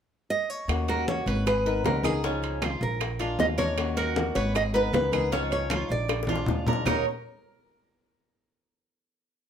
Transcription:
0.30 D#5
0.50 C#5
0.68 D#2 D#3 A#3 C#4 F#4, high bongo, high conga, high timbale, claves
0.88 F#4 A#4, high conga, high timbale
1.07 D#3 A#3 C#4 F#4 C#5, high bongo, high conga, low timbale
1.26 G#1 B4, high timbale
1.46 G#4 B4, muted nylon-string guitar stroke, high bongo, high timbale, claves
1.66 G#3 B3 D#4 A#4 B4, high conga
1.84 C#2 G#3 B3 D#4 A#4, high bongo, low bongo, high conga, high timbale, low timbale
2.03 G#3 B3 D#4 G#4 A#4, high conga, high timbale, claves
2.23 C#3 F3 G#3 C#4 D#4 F4, high bongo, high conga
2.43 high bongo, high conga, high timbale
2.62 F3 G#3 D#4 F4, high bongo, high conga, high timbale, low timbale, claves
2.81 A#1 A#4, high bongo, high conga
3.00 muted nylon-string guitar stroke, high bongo, high conga, high timbale, claves
3.19 G#3 D4 F4, high bongo, high conga, high timbale
3.39 D#2 F3 G#3 D4 F4 D#5, high bongo, low bongo, high conga, low timbale
3.58 G#3 D4 F4 A#4 C#5, high conga, high timbale
3.77 D#3 A#3 C#4 F#4, high bongo, high conga, high timbale, claves
3.97 F#4 A#4, high conga, high timbale
4.16 D#3 A#3 C#4 F#4, high bongo, high conga, low timbale
4.35 G#1 B4 C#5, high timbale
4.55 G#4 D#5, muted nylon-string guitar stroke, high bongo, high conga, high timbale, claves
4.74 G#3 B3 D#4 A#4 B4, high conga
4.93 C#2 G#3 B3 D#4 A#4 B4, high bongo, low bongo, high conga, high timbale, low timbale
5.12 G#3 B3 D#4 G#4 A#4, high conga, high timbale, claves
5.32 C#3 F3 G#3 C#4 D#4 F4 C#5, high bongo, high conga
5.51 C#5, high bongo, high conga, high timbale
5.70 F3 G#3 D#4 F4, high bongo, high conga, high timbale, low timbale, claves
5.89 A#1 D5, high bongo, high conga
6.08 muted nylon-string guitar stroke, high bongo, high conga, high timbale, claves
6.23 high bongo
6.27 G#3 D4 F4, high conga, high timbale
6.36 high bongo
6.46 D#2 F3 G#3 D4 F4, low bongo, low conga
6.67 G#3 D4 F4 A#4, low conga, low timbale
6.73 low bongo
6.86 D#2 D#3 A#3 C#4 D#4 F#4 A#4 C#5, low bongo, low conga, low timbale, claves

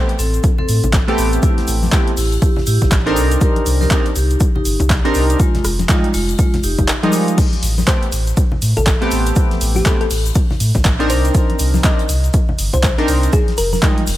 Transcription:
Already playing: A3 B3 C4 G4
0.09 closed hi-hat
0.19 A1 C4 A4, open hi-hat, shaker
0.34 closed hi-hat, shaker
0.43 kick, closed hi-hat, shaker
0.58 C4 A4, low conga
0.69 A2, open hi-hat, shaker
0.83 A1, closed hi-hat, low conga, shaker
0.93 kick, snare, clap, closed hi-hat, shaker
1.08 A3 B3 C4 G4 A4, cross-stick, snare, closed hi-hat
1.18 A1, open hi-hat, shaker
1.33 closed hi-hat, shaker
1.43 E4 G4, kick, closed hi-hat, shaker
1.58 snare, closed hi-hat, high conga
1.67 A1, open hi-hat, shaker
1.82 snare, high conga, shaker
1.92 A3 B3 C4 E4 G4, kick, snare, clap, closed hi-hat, shaker
2.08 closed hi-hat
2.17 A1 E4 G4, open hi-hat, shaker
2.32 closed hi-hat, shaker
2.42 E4 G4, kick, closed hi-hat, shaker
2.56 snare, low conga
2.66 A2 E4 G4, open hi-hat, shaker
2.81 A1, kick, snare, closed hi-hat, low conga, shaker
2.91 kick, snare, clap, closed hi-hat, shaker
3.06 C4 D4 D#4 A4 A#4, cross-stick, snare, closed hi-hat
3.16 C2, open hi-hat, shaker
3.31 closed hi-hat, shaker
3.41 G4 A#4, kick, closed hi-hat, shaker
3.56 closed hi-hat, high conga
3.66 C2, open hi-hat, shaker
3.81 G4 A#4, snare, high conga, shaker
3.90 C4 D4 D#4 A#4, kick, snare, clap, closed hi-hat, shaker
4.06 closed hi-hat
4.16 C2 D#4 G4, open hi-hat, shaker
4.30 closed hi-hat, shaker
4.40 kick, closed hi-hat, shaker
4.55 D#4 G4, low conga
4.65 G1, open hi-hat, shaker
4.80 C2, closed hi-hat, low conga, shaker
4.90 kick, snare, clap, closed hi-hat, shaker
5.04 C4 D4 D#4 G4 A#4, cross-stick, snare, closed hi-hat
5.14 C2, open hi-hat, shaker
5.30 closed hi-hat, shaker
5.40 G#3 F4, kick, closed hi-hat, shaker
5.54 snare, closed hi-hat, high conga, low conga
5.64 F1, cross-stick, open hi-hat, shaker
5.79 snare, closed hi-hat, high conga, shaker
5.89 F3 G3 G#3 D#4 F4, kick, snare, clap, closed hi-hat, shaker
6.04 closed hi-hat
6.14 F1 G#3 F4, open hi-hat, shaker
6.29 closed hi-hat, shaker
6.38 G#3 F4, kick, closed hi-hat, shaker
6.54 snare, closed hi-hat, low conga
6.63 F1 D#4 G4, open hi-hat, shaker
6.78 F1, kick, closed hi-hat, low conga, shaker
6.88 snare, clap, closed hi-hat, shaker
7.03 F3 G3 G#3 D#4 G4 A#4, cross-stick, snare, closed hi-hat
7.12 open hi-hat, shaker
7.28 closed hi-hat, shaker
7.38 kick, closed hi-hat, crash, ride, shaker
7.53 closed hi-hat, high conga
7.63 A1, open hi-hat, ride, shaker
7.78 snare, high conga, shaker
7.87 A3 B3 C4 G4 C5, kick, snare, clap, closed hi-hat, ride, shaker
8.03 closed hi-hat
8.12 A1, open hi-hat, ride, shaker
8.27 closed hi-hat, shaker
8.37 kick, closed hi-hat, ride, shaker
8.52 low conga
8.62 A2, open hi-hat, ride, shaker
8.77 A1 A4, closed hi-hat, low conga, shaker
8.86 A4, kick, snare, clap, closed hi-hat, ride, shaker
9.01 A3 B3 C4 G4, cross-stick, snare, closed hi-hat
9.11 A1, open hi-hat, ride, shaker
9.26 closed hi-hat, shaker
9.36 kick, closed hi-hat, ride, shaker
9.51 snare, closed hi-hat, high conga
9.61 A1, open hi-hat, ride, shaker
9.75 G4, snare, high conga, shaker
9.85 A3 B3 C4 G4 A4, kick, snare, clap, closed hi-hat, ride, shaker
10.01 A4, closed hi-hat
10.11 A1, open hi-hat, ride, shaker
10.26 closed hi-hat, shaker
10.35 kick, closed hi-hat, ride, shaker
10.51 snare, low conga
10.60 A2, open hi-hat, ride, shaker
10.75 A1, kick, snare, closed hi-hat, low conga, shaker
10.84 kick, snare, clap, closed hi-hat, ride, shaker
10.99 C4 D4 D#4 A#4, cross-stick, snare, closed hi-hat
11.10 C2 C5, open hi-hat, ride, shaker
11.25 closed hi-hat, shaker
11.34 kick, closed hi-hat, ride, shaker
11.50 closed hi-hat, high conga
11.59 C2, open hi-hat, ride, shaker
11.74 snare, high conga, shaker
11.84 C4 D4 D#4 A#4 D#5, kick, snare, clap, closed hi-hat, ride, shaker
11.99 closed hi-hat
12.09 C2, open hi-hat, ride, shaker
12.24 closed hi-hat, shaker
12.33 kick, closed hi-hat, ride, shaker
12.49 low conga
12.59 G1, open hi-hat, ride, shaker
12.73 C2 C5, closed hi-hat, low conga, shaker
12.83 C5, kick, snare, clap, closed hi-hat, ride, shaker
12.98 C4 D4 D#4 A#4, cross-stick, snare, closed hi-hat
13.08 C2, open hi-hat, ride, shaker
13.23 closed hi-hat, shaker
13.33 G#4, kick, closed hi-hat, ride, shaker
13.48 snare, closed hi-hat, high conga
13.57 F1 A#4, open hi-hat, ride, shaker
13.73 A#4, snare, high conga, shaker
13.82 F3 G3 G#3 D#4, kick, snare, clap, closed hi-hat, ride, shaker
13.98 closed hi-hat
14.07 F1, open hi-hat, ride, shaker

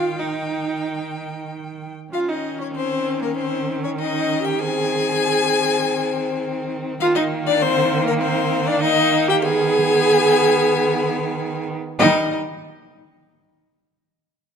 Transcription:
Already playing: D#3 F4 F5 G5
0.18 D#4 D#5
2.13 D#3 C#4 F4 F5
2.29 D#4 D#5
2.59 C#4 C#5
2.75 C4 C5
3.22 A#3 A#4
3.37 C4 C5
3.83 C#4 C#5
3.99 C#4 D#4 D#5
4.43 G4 G5
4.59 C4 G#4 G#5
7.00 D#3 A#3 F4 F5
7.15 D#4 D#5
7.46 D4 D5
7.61 C4 C5
8.06 A#3 A#4
8.21 C4 C5
8.67 D4 D5
8.81 A#3 D#4 D#5
9.28 G4 G5
9.43 B3 G#4 G#5
11.99 D#3 G3 D#4 D#5

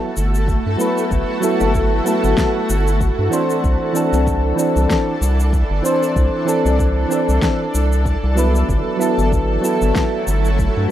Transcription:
Already playing: A3 E4 F#4 A4
0.17 G1, cabasa
0.35 cabasa
0.48 kick, cabasa
0.66 G2
0.77 F#3 B3 E4 B4, cabasa
0.98 cabasa
1.11 G1, kick, cabasa
1.41 F#3 B3 E4 A4, cabasa
1.60 G1, high bongo, cabasa
1.74 kick, cabasa
2.04 F#3 B3 E4 A4, cabasa
2.24 G1, cabasa
2.35 F#3 B3 E4 A4, kick, snare, cabasa
2.70 G1, cabasa
2.87 cabasa
3.01 kick, cabasa
3.19 G2
3.30 E3 C4 D4 C5, cabasa
3.50 cabasa
3.64 C2 E3 D4 A4, kick, cabasa
3.93 E3 C4 D4 A4, cabasa
4.12 C2, high bongo, cabasa
4.27 kick, cabasa
4.56 E3 C4 D4 A4, cabasa
4.76 C2, cabasa
4.88 E3 C4 D4 A4, kick, snare, cabasa
5.21 C2, cabasa
5.40 cabasa
5.53 kick, cabasa
5.70 G1
5.82 E3 C4 D4 C5, cabasa
6.03 cabasa
6.16 C2, kick, cabasa
6.45 E3 C4 D4 A4, cabasa
6.65 C2, high bongo, cabasa
6.79 kick, cabasa
7.08 E3 C4 D4 A4, cabasa
7.29 C2, cabasa
7.41 E3 C4 D4 A4, kick, snare, cabasa
7.74 C2, cabasa
7.92 cabasa
8.06 kick, cabasa
8.23 C2
8.35 F#3 B3 E4 B4, cabasa
8.55 cabasa
8.69 G1 F#3 A3 E4, kick, cabasa
8.97 F#3 B3 E4
9.01 A4, cabasa
9.18 G1, high bongo, cabasa
9.32 kick, cabasa
9.61 F#3 B3 E4 A4, cabasa
9.82 G1, cabasa
9.93 F#3 B3 E4 A4, kick, snare, cabasa
10.27 G1, cabasa
10.45 cabasa
10.59 kick, cabasa
10.77 G2
10.88 F#3

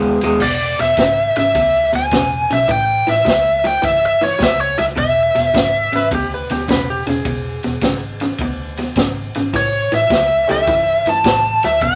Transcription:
Already playing: D#2 B2 G#3
0.21 D#2 B2 G#3, snare, ride
0.40 E1 E2 B2 D5, kick, snare, crash
0.79 E1 E2 B2 E5, snare, ride
0.97 G#1 E2 C#3, kick, snare, ride
1.36 G#1 E2 C#3 E5, snare, ride
1.55 D2 E2 B2, kick, ride
1.93 D2 E2 B2 G#5, snare, ride
2.11 E1 E2 C#3, kick, snare, ride
2.50 B1 E2 C#3 E5, snare, ride
2.68 A1 A2 E3 G5, kick, ride
3.07 A1 A2 E3 E5, snare, ride
3.25 C#2 A2 F#3, kick, snare, ride
3.64 A2 F#3 G5, snare, ride
3.82 G1 A2 E3 E5, kick, ride
4.06 E5
4.21 A2 E3 C#5, snare, ride
4.39 C#2 A2 F#3, kick, snare, ride
4.43 E5
4.61 C#5
4.78 C#2 A2 F#3 E5, snare, ride
4.96 E1 E2 B2 E5, kick, ride
5.35 E1 E2 B2, snare, ride
5.54 G#1 E2 C#3, kick, snare, ride
5.92 G#1 E2 C#3 B4, snare, ride
6.11 D2 E2 B2 G4, kick, ride
6.34 B4
6.50 D2 E2 B2 G4, snare, ride
6.68 E1 E2 C#3 B4, kick, snare, ride
6.90 G4
7.07 E1 E2 C#3 G#4, snare, ride
7.25 E1 E2 B2, kick, ride
7.63 E1 E2 B2, snare, ride
7.81 G#1 E2 C#3, kick, snare, ride
8.20 E2 C#3, snare, ride
8.38 D2 E2 B2, kick, ride
8.77 E2 B2, snare, ride
8.96 G#1 E2 C#3, kick, snare, ride
9.35 G#1 E2 C#3, snare, ride
9.53 A1 A2 E3 C#5, kick, snare, ride
9.92 A1 A2 E3 E5, snare, ride
10.10 C#2 A2 F#3, kick, snare, ride
10.47 C#2 A2 F#3 A3 C#4 E4 G4, snare, ride
10.51 E5
10.67 G1 A2 E3, kick, ride
11.05 G1 A2 E3 A5, snare, ride
11.24 A1 A2 F#3, kick, snare, ride
11.63 D2 A2 F#3 E5, snare, ride
11.81 E1 E2 B2 G5, kick, ride

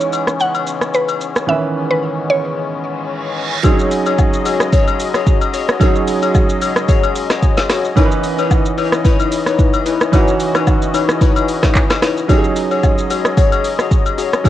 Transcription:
Already playing: C#3 E3 G#3 B3 C#4 D#4 B4 C#5
0.01 shaker
0.13 high agogo, shaker
0.27 cross-stick, shaker
0.40 F#5, shaker
0.55 high agogo, shaker
0.67 shaker
0.82 cross-stick, shaker
0.94 B4, shaker
1.09 high agogo, shaker
1.21 shaker
1.36 cross-stick, shaker
1.47 D#3 E3 C#4 B4 E5
1.91 B4
2.30 C#5
2.56 reverse cymbal
3.63 C#3 F#3 G#3 C4 D#4 F#4 G#4 C#5 D#5, kick, high agogo, shaker
3.71 C#4
3.79 shaker
3.91 open hi-hat, shaker
4.06 F#4 G#4 C#5, high agogo, shaker
4.18 kick, low woodblock, shaker
4.33 shaker
4.45 F#4 G#4 C#5, open hi-hat, high agogo, shaker
4.60 cross-stick, shaker
4.72 F#4 G#4 C#5, kick, shaker
4.87 high agogo, shaker
4.99 open hi-hat, shaker
5.14 F#4 G#4 C#5, cross-stick, shaker
5.26 kick, shaker
5.41 high agogo, shaker
5.53 F#4 G#4 C#5, open hi-hat, shaker
5.68 cross-stick, shaker
5.79 F#3 C#4 D#4 F#4 G#4 C#5, kick, high agogo, shaker
5.95 shaker
6.07 open hi-hat, shaker
6.22 F#4 G#4 C#5, high agogo, shaker
6.34 kick, low woodblock, shaker
6.49 shaker
6.61 F#4 G#4 C#5, open hi-hat, high agogo, shaker
6.76 cross-stick, shaker
6.88 F#4 G#4 C#5, kick, shaker
7.04 high agogo, shaker
7.16 open hi-hat, shaker
7.30 F#4 G#4 C#5, cross-stick, snare, shaker
7.43 kick, shaker
7.57 snare, high agogo, shaker
7.69 F#4 G#4 C#5, cross-stick, snare, open hi-hat, shaker
7.85 shaker
7.96 E3 B3 C#4 D#4 E4 A#4 B4 C#5, kick, high agogo, shaker
8.05 B4
8.11 shaker
8.24 open hi-hat, shaker
8.38 D#4 E4 B4 C#5, high agogo, shaker
8.51 kick, low woodblock, shaker
8.66 shaker
8.78 D#4 E4 B4 C#5, open hi-hat, high agogo, shaker
8.92 cross-stick, shaker
9.05 D#4 E4 B4 C#5, kick, shaker
9.20 high agogo, shaker
9.32 open hi-hat, shaker
9.46 D#4 E4 B4 C#5, cross-stick, shaker
9.59 kick, shaker
9.74 high agogo, shaker
9.86 D#4 E4 B4 C#5, open hi-hat, shaker
10.01 cross-stick, shaker
10.12 E3 C#4 D#4 E4 F#4 B4 C#5, kick, high agogo, shaker
10.28 shaker
10.40 open hi-hat, shaker
10.55 D#4 E4 B4 C#5, cross-stick, high agogo, shaker
10.67 kick, low woodblock, shaker
10.82 shaker
10.94 D#4 E4 B4 C#5, open hi-hat, high agogo, shaker
11.09 cross-stick, shaker
11.21 D#4 E4 B4 C#5, kick, shaker
11.36 high agogo, shaker
11.48 open hi-hat, shaker
11.63 D#4 E4 B4 C#5, kick, cross-stick, snare, shaker
11.75 kick, clap, shaker
11.90 cross-stick, snare, high agogo, shaker
12.02 D#4 E4 B4 C#5, cross-stick, snare, open hi-hat, shaker
12.17 shaker
12.28 F#3 G#3 C#4 D#4 F#4 G4 G#4 C#5, kick, high agogo, shaker
12.38 G#4
12.44 shaker
12.56 open hi-hat, shaker
12.71 F#4 G#4 C#5, high agogo, shaker
12.83 kick, low woodblock, shaker
12.98 shaker
13.10 F#4 G#4 C#5, open hi-hat, high agogo, shaker
13.25 cross-stick, shaker
13.37 F#4 G#4 C#5, kick, shaker
13.52 high agogo, shaker
13.64 open hi-hat, shaker
13.79 F#4 G#4 C#5, cross-stick, shaker
13.91 kick, shaker
14.06 high agogo, shaker
14.18 F#4 G#4 C#5, open hi-hat, shaker
14.33 cross-stick, shaker
14.44 F#3 C#4 F#4 G#4 C#5, kick, high agogo, shaker

